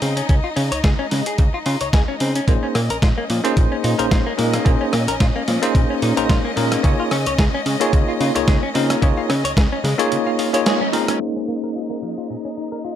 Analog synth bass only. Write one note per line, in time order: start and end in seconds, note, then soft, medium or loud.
0.02 0.22 C#3 medium
0.29 0.40 C#2 loud
0.57 0.71 C#3 medium
0.72 0.82 C#2 soft
0.84 0.95 C#2 medium
1.12 1.22 C#3 medium
1.39 1.49 C#2 medium
1.66 1.77 C#3 medium
1.81 1.91 C#2 soft
1.93 2.04 C#2 medium
2.21 2.41 C#3 medium
2.48 2.58 A#1 loud
2.75 2.90 A#2 medium
2.90 3.00 A#1 soft
3.02 3.13 A#1 medium
3.30 3.40 A#2 medium
3.57 3.67 A#1 medium
3.84 3.95 A#2 medium
4.00 4.09 A#1 soft
4.11 4.22 A#1 medium
4.39 4.59 A#2 medium
4.66 4.76 A#1 loud
4.94 5.08 A#2 medium
5.08 5.18 A#1 soft
5.21 5.31 A#1 medium
5.48 5.58 A#2 medium
5.75 5.85 A#1 medium
6.02 6.13 A#2 medium
6.17 6.27 A#1 soft
6.30 6.40 A#1 medium
6.57 6.77 A#2 medium
6.84 6.95 C#2 loud
7.11 7.26 C#3 medium
7.26 7.36 C#2 soft
7.39 7.49 C#2 medium
7.66 7.76 C#3 medium
7.93 8.04 C#2 medium
8.21 8.31 C#3 medium
8.36 8.45 C#2 soft
8.48 8.58 C#2 medium
8.75 8.95 C#3 medium
9.03 9.13 C#2 loud
9.30 9.44 C#3 medium
9.44 9.54 C#2 soft
9.57 9.67 C#2 medium
9.84 9.94 C#3 medium